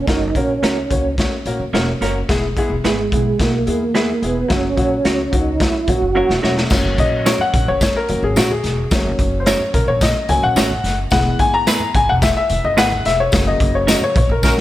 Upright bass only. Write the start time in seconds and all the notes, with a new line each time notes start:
0.08 F#1
0.63 C#2
0.90 C#2
1.46 A#1
1.60 F#1
1.73 E1
2.01 F#1
2.29 E1
2.70 E1
2.84 G#1
3.12 B1
3.40 B1
3.67 E2
4.22 E1
4.50 F#1
4.78 A#1
5.05 C#2
5.33 C#2
5.88 A#1
6.01 F#1
6.29 E1
6.43 E1
6.71 F#1
6.98 A#1
7.54 A#1
7.68 F#1
8.09 F#1
8.23 G#1
8.36 A#1
8.64 E1
8.91 F#1
9.19 F#1
9.74 A#1
9.88 A#1
10.29 C#2
10.43 A#1
10.56 G#1
10.84 F#1
11.12 E1
11.39 G#1
11.94 G#1
12.09 E1
12.50 E1
12.64 F#1
12.78 G#1
13.06 E1
13.33 F#1
13.60 F#1
14.16 A#1
14.29 A#1